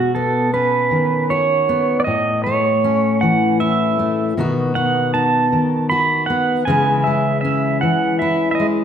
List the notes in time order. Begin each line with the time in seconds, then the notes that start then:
Already playing: B2 F#4
0.15 B3 A4
0.54 C#4 B4
0.91 D#3
1.30 F#4 C#5
1.69 B3
2.00 D5
2.04 A2 D#5
2.44 A3 C#5
2.84 C#4
3.21 E3 F#5
3.60 E4 E5
3.99 A3
4.37 B2 D#3 B3 D#4 F#4
4.75 B3 F#5
5.14 D#4 A5
5.52 D#3
5.90 F#4 B5
6.26 B3 F#5
6.65 C#3 E3 G#3 G#5
6.69 C#4 E4
7.04 G#3 E5
7.41 C#4 E5
7.81 E3 F#5
8.19 E4 E5
8.51 D#5 E5
8.60 G#3